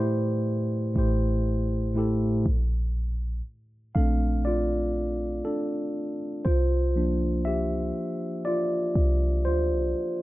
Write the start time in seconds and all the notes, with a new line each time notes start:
Already playing: A2 A3 E4 G4 B4
0.00 C5
0.94 A1 A2 A3 E4 G4
0.99 C5
1.94 A2 A3 E4 G4
1.99 A4
2.46 A#1
3.95 A#1 A3 C4 D4 A4 F5
4.45 F4 D5
5.45 D4 A4
6.45 C2 F4 C5
6.96 F3 A#3 D4
7.45 G4 E5
8.45 F4 D5
8.96 C2
9.45 D2 F4 C5
9.72 C2